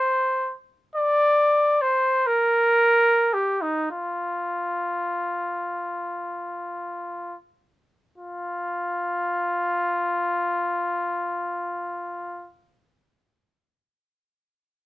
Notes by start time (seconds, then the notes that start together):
Already playing: C5
0.95 D5
1.82 C5
2.26 A#4
3.33 G4
3.62 D#4
3.91 F4
8.18 F4